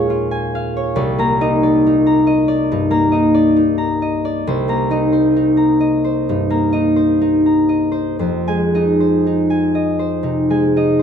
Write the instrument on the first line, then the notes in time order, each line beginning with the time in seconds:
harp
Already playing: D#2 A#2 G#3 A#4 C#5 D#5 F5 G#5 A#5
0.10 F4
0.31 G#5
0.55 F5
0.77 C#5
0.96 C2 D5
1.18 A#3 A#5
1.41 D#4 D#5
1.63 D5
1.87 D#4
2.06 A#5
2.27 D#5
2.48 D5
2.72 G2 D#4
2.91 A#3 A#5
3.12 D#4 D#5
3.34 D5
3.56 D#4
3.78 A#5
4.02 D#5
4.25 D5
4.47 C2 C5
4.68 A#3 A#5
4.91 D#4 D#5
5.12 C5
5.36 D#4
5.57 A#5
5.80 D#5
6.04 C5
6.29 G2 D#4
6.50 A#3 A#5
6.73 D#4 D#5
6.96 C5
7.21 D#4
7.46 A#5
7.69 D#5
7.92 C5
8.19 F2 C5
8.48 G#3 G#5
8.74 D#4 D#5
9.00 C5
9.27 D#4
9.50 G#5
9.75 D#5
9.99 C5
10.23 C3 D#4
10.50 G#3 G#5
10.76 D#4 D#5
10.99 C5